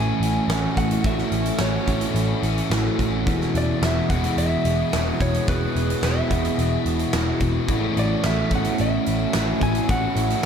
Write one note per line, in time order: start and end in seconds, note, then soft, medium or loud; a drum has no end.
0.00 0.11 A1 medium
0.00 0.47 A2 medium
0.00 0.49 E3 medium
0.00 0.48 A3 medium
0.00 0.48 C#4 medium
0.00 3.23 C#4 medium
0.00 10.46 E4 medium
0.00 0.52 F#4 medium
0.00 3.23 F#4 medium
0.00 3.24 A4 medium
0.00 10.46 E5 medium
0.00 0.77 G#5 loud
0.20 0.38 A1 medium
0.20 closed hi-hat medium
0.48 0.66 A1 medium
0.48 1.02 A2 medium
0.48 1.04 E3 medium
0.48 1.03 A3 medium
0.48 1.04 C#4 medium
0.48 1.07 F#4 medium
0.48 snare loud
0.48 closed hi-hat medium
0.77 0.95 A1 medium
0.77 1.06 F#5 medium
0.77 kick medium
0.77 closed hi-hat medium
0.91 closed hi-hat medium
1.04 1.22 A1 medium
1.04 1.86 A2 medium
1.04 1.89 E3 medium
1.04 1.87 A3 medium
1.04 1.86 C#4 medium
1.04 1.86 F#4 loud
1.04 1.62 E5 medium
1.04 kick loud
1.04 closed hi-hat medium
1.19 snare soft
1.32 1.50 A1 medium
1.32 closed hi-hat medium
1.46 closed hi-hat medium
1.59 1.77 A1 medium
1.59 2.67 C#5 medium
1.59 snare loud
1.59 closed hi-hat medium
1.86 2.05 A1 medium
1.86 2.69 A2 medium
1.86 2.71 E3 medium
1.86 2.70 A3 medium
1.86 2.69 C#4 medium
1.86 2.74 F#4 medium
1.86 kick medium
1.86 closed hi-hat medium
2.01 closed hi-hat medium
2.15 2.32 A1 medium
2.15 closed hi-hat medium
2.43 2.60 A1 medium
2.43 closed hi-hat medium
2.58 closed hi-hat medium
2.70 2.88 A1 medium
2.70 3.24 A2 medium
2.70 3.27 E3 medium
2.70 3.25 A3 medium
2.70 3.26 C#4 medium
2.70 3.29 F#4 medium
2.70 snare loud
2.70 closed hi-hat medium
2.99 3.26 A1 medium
2.99 kick medium
2.99 closed hi-hat medium
3.26 3.44 E1 medium
3.26 4.12 E2 medium
3.26 4.08 B2 medium
3.26 4.11 E3 loud
3.26 4.10 G#3 loud
3.26 7.66 B3 medium
3.26 4.10 B3 medium
3.26 10.46 F#4 medium
3.26 4.08 F#4 loud
3.26 7.65 G#4 medium
3.26 kick loud
3.26 closed hi-hat medium
3.41 snare soft
3.55 3.72 E1 medium
3.55 3.84 D5 medium
3.55 closed hi-hat medium
3.82 3.99 E1 medium
3.82 4.09 E5 medium
3.82 snare loud
3.82 closed hi-hat medium
4.09 4.27 E1 medium
4.09 4.90 E2 medium
4.09 4.92 B2 medium
4.09 4.93 E3 medium
4.09 4.91 G#3 medium
4.09 4.91 B3 medium
4.09 4.95 F#4 medium
4.09 4.38 F#5 medium
4.09 kick medium
4.09 closed hi-hat medium
4.24 closed hi-hat medium
4.37 4.55 E1 medium
4.37 5.23 E5 loud
4.37 closed hi-hat medium
4.65 4.82 E1 medium
4.65 closed hi-hat medium
4.92 5.11 E1 medium
4.92 5.45 E2 medium
4.92 5.46 B2 medium
4.92 5.49 E3 medium
4.92 5.47 G#3 medium
4.92 5.47 B3 medium
4.92 5.50 F#4 medium
4.92 snare loud
4.92 closed hi-hat medium
5.20 5.38 E1 medium
5.20 5.49 C#5 medium
5.20 kick medium
5.20 closed hi-hat medium
5.34 closed hi-hat medium
5.47 5.66 E1 medium
5.47 6.29 E2 medium
5.47 6.29 B2 medium
5.47 6.31 E3 loud
5.47 6.29 G#3 medium
5.47 6.28 B3 medium
5.47 6.29 F#4 medium
5.47 6.05 B4 medium
5.47 kick loud
5.47 closed hi-hat medium
5.76 5.93 E1 medium
5.76 closed hi-hat medium
5.90 closed hi-hat medium
6.03 6.20 E1 medium
6.03 6.82 E5 medium
6.03 snare loud
6.03 closed hi-hat medium
6.29 6.48 E1 medium
6.29 7.11 E2 medium
6.29 7.12 B2 medium
6.29 7.14 E3 medium
6.29 7.12 G#3 medium
6.29 7.11 B3 medium
6.29 7.15 F#4 medium
6.29 kick medium
6.29 closed hi-hat medium
6.45 closed hi-hat medium
6.59 6.76 E1 medium
6.59 closed hi-hat medium
6.86 7.03 E1 medium
6.86 closed hi-hat medium
6.99 closed hi-hat medium
7.12 7.31 E1 medium
7.12 7.66 E2 medium
7.12 7.67 B2 medium
7.12 7.68 E3 medium
7.12 7.68 G#3 medium
7.12 7.68 B3 medium
7.12 7.71 F#4 medium
7.12 snare loud
7.12 closed hi-hat medium
7.40 7.58 E1 medium
7.40 kick medium
7.40 closed hi-hat medium
7.67 7.86 A1 medium
7.67 8.54 A2 medium
7.67 8.53 E3 medium
7.67 8.52 A3 medium
7.67 10.46 C#4 medium
7.67 8.51 C#4 medium
7.67 8.50 F#4 loud
7.67 10.46 A4 medium
7.67 kick loud
7.67 closed hi-hat medium
7.97 8.14 A1 medium
7.97 8.26 D5 medium
7.97 closed hi-hat medium
8.24 8.42 A1 medium
8.24 8.53 E5 medium
8.24 snare loud
8.24 closed hi-hat medium
8.51 8.69 A1 medium
8.51 9.32 A2 medium
8.51 9.34 E3 medium
8.51 9.33 A3 medium
8.51 9.33 C#4 medium
8.51 9.37 F#4 medium
8.51 kick medium
8.51 closed hi-hat medium
8.55 8.81 F#5 medium
8.64 closed hi-hat medium
8.78 8.97 A1 medium
8.78 9.62 E5 medium
8.78 closed hi-hat medium
9.06 9.25 A1 medium
9.06 closed hi-hat medium
9.33 9.52 A1 medium
9.33 9.87 A2 medium
9.33 9.90 E3 medium
9.33 9.88 A3 medium
9.33 9.89 C#4 medium
9.33 9.93 F#4 medium
9.33 snare loud
9.33 closed hi-hat medium
9.61 9.79 A1 medium
9.61 9.90 G#5 medium
9.61 kick medium
9.61 closed hi-hat medium
9.75 closed hi-hat medium
9.89 10.07 A1 medium
9.89 10.46 A2 medium
9.89 10.46 E3 medium
9.89 10.46 A3 medium
9.89 10.46 C#4 loud
9.89 10.46 F#5 loud
9.89 kick loud
9.89 closed hi-hat medium
9.93 10.46 F#4 loud
10.16 10.34 A1 medium
10.16 closed hi-hat medium
10.30 closed hi-hat medium